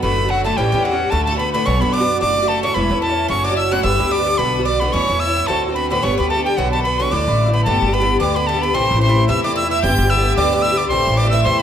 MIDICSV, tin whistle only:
0, 0, Header, 1, 2, 480
1, 0, Start_track
1, 0, Key_signature, 2, "major"
1, 0, Tempo, 271862
1, 58, Time_signature, 4, 2, 24, 8
1, 13530, Key_signature, 1, "major"
1, 20520, End_track
2, 0, Start_track
2, 0, Title_t, "Tin whistle"
2, 0, Program_c, 0, 75
2, 44, Note_on_c, 0, 83, 110
2, 536, Note_on_c, 0, 78, 93
2, 562, Note_off_c, 0, 83, 0
2, 783, Note_off_c, 0, 78, 0
2, 793, Note_on_c, 0, 81, 82
2, 1001, Note_on_c, 0, 79, 82
2, 1028, Note_off_c, 0, 81, 0
2, 1473, Note_on_c, 0, 78, 93
2, 1500, Note_off_c, 0, 79, 0
2, 1945, Note_on_c, 0, 81, 104
2, 1971, Note_off_c, 0, 78, 0
2, 2190, Note_off_c, 0, 81, 0
2, 2201, Note_on_c, 0, 81, 82
2, 2415, Note_off_c, 0, 81, 0
2, 2426, Note_on_c, 0, 83, 94
2, 2690, Note_off_c, 0, 83, 0
2, 2697, Note_on_c, 0, 83, 96
2, 2927, Note_on_c, 0, 85, 103
2, 2953, Note_off_c, 0, 83, 0
2, 3190, Note_on_c, 0, 83, 101
2, 3217, Note_off_c, 0, 85, 0
2, 3402, Note_on_c, 0, 86, 117
2, 3428, Note_off_c, 0, 83, 0
2, 3891, Note_off_c, 0, 86, 0
2, 3899, Note_on_c, 0, 86, 112
2, 4381, Note_on_c, 0, 81, 97
2, 4408, Note_off_c, 0, 86, 0
2, 4633, Note_off_c, 0, 81, 0
2, 4644, Note_on_c, 0, 85, 105
2, 4842, Note_on_c, 0, 83, 91
2, 4869, Note_off_c, 0, 85, 0
2, 5316, Note_off_c, 0, 83, 0
2, 5327, Note_on_c, 0, 81, 106
2, 5782, Note_off_c, 0, 81, 0
2, 5818, Note_on_c, 0, 85, 114
2, 6073, Note_on_c, 0, 86, 100
2, 6100, Note_off_c, 0, 85, 0
2, 6292, Note_off_c, 0, 86, 0
2, 6302, Note_on_c, 0, 88, 102
2, 6575, Note_on_c, 0, 90, 97
2, 6601, Note_off_c, 0, 88, 0
2, 6761, Note_off_c, 0, 90, 0
2, 6772, Note_on_c, 0, 88, 108
2, 7273, Note_on_c, 0, 86, 109
2, 7299, Note_off_c, 0, 88, 0
2, 7728, Note_on_c, 0, 83, 114
2, 7754, Note_off_c, 0, 86, 0
2, 8196, Note_off_c, 0, 83, 0
2, 8207, Note_on_c, 0, 86, 86
2, 8473, Note_on_c, 0, 83, 90
2, 8499, Note_off_c, 0, 86, 0
2, 8698, Note_on_c, 0, 85, 97
2, 8725, Note_off_c, 0, 83, 0
2, 9178, Note_on_c, 0, 88, 113
2, 9205, Note_off_c, 0, 85, 0
2, 9654, Note_on_c, 0, 81, 104
2, 9681, Note_off_c, 0, 88, 0
2, 9936, Note_off_c, 0, 81, 0
2, 10146, Note_on_c, 0, 83, 96
2, 10403, Note_off_c, 0, 83, 0
2, 10435, Note_on_c, 0, 83, 91
2, 10655, Note_on_c, 0, 85, 101
2, 10681, Note_off_c, 0, 83, 0
2, 10906, Note_off_c, 0, 85, 0
2, 10917, Note_on_c, 0, 83, 87
2, 11103, Note_off_c, 0, 83, 0
2, 11113, Note_on_c, 0, 81, 96
2, 11369, Note_off_c, 0, 81, 0
2, 11388, Note_on_c, 0, 79, 80
2, 11599, Note_on_c, 0, 78, 93
2, 11625, Note_off_c, 0, 79, 0
2, 11845, Note_off_c, 0, 78, 0
2, 11855, Note_on_c, 0, 81, 85
2, 12045, Note_off_c, 0, 81, 0
2, 12056, Note_on_c, 0, 83, 93
2, 12329, Note_on_c, 0, 85, 90
2, 12356, Note_off_c, 0, 83, 0
2, 12563, Note_on_c, 0, 86, 79
2, 12589, Note_off_c, 0, 85, 0
2, 13284, Note_off_c, 0, 86, 0
2, 13294, Note_on_c, 0, 83, 80
2, 13483, Note_off_c, 0, 83, 0
2, 13493, Note_on_c, 0, 81, 95
2, 14003, Note_on_c, 0, 83, 107
2, 14029, Note_off_c, 0, 81, 0
2, 14473, Note_off_c, 0, 83, 0
2, 14483, Note_on_c, 0, 86, 95
2, 14751, Note_on_c, 0, 83, 98
2, 14778, Note_off_c, 0, 86, 0
2, 14953, Note_on_c, 0, 81, 98
2, 14979, Note_off_c, 0, 83, 0
2, 15216, Note_on_c, 0, 83, 90
2, 15243, Note_off_c, 0, 81, 0
2, 15440, Note_on_c, 0, 84, 109
2, 15466, Note_off_c, 0, 83, 0
2, 15914, Note_off_c, 0, 84, 0
2, 15924, Note_on_c, 0, 84, 90
2, 16370, Note_off_c, 0, 84, 0
2, 16389, Note_on_c, 0, 88, 107
2, 16645, Note_off_c, 0, 88, 0
2, 16660, Note_on_c, 0, 86, 104
2, 16862, Note_off_c, 0, 86, 0
2, 16883, Note_on_c, 0, 88, 113
2, 17124, Note_off_c, 0, 88, 0
2, 17135, Note_on_c, 0, 88, 103
2, 17334, Note_off_c, 0, 88, 0
2, 17344, Note_on_c, 0, 91, 127
2, 17831, Note_on_c, 0, 88, 120
2, 17858, Note_off_c, 0, 91, 0
2, 18291, Note_off_c, 0, 88, 0
2, 18302, Note_on_c, 0, 86, 103
2, 18754, Note_on_c, 0, 88, 124
2, 18781, Note_off_c, 0, 86, 0
2, 19023, Note_on_c, 0, 86, 95
2, 19049, Note_off_c, 0, 88, 0
2, 19206, Note_off_c, 0, 86, 0
2, 19217, Note_on_c, 0, 84, 127
2, 19725, Note_on_c, 0, 86, 105
2, 19751, Note_off_c, 0, 84, 0
2, 19943, Note_off_c, 0, 86, 0
2, 19954, Note_on_c, 0, 88, 98
2, 20177, Note_off_c, 0, 88, 0
2, 20195, Note_on_c, 0, 84, 99
2, 20464, Note_on_c, 0, 83, 92
2, 20490, Note_off_c, 0, 84, 0
2, 20520, Note_off_c, 0, 83, 0
2, 20520, End_track
0, 0, End_of_file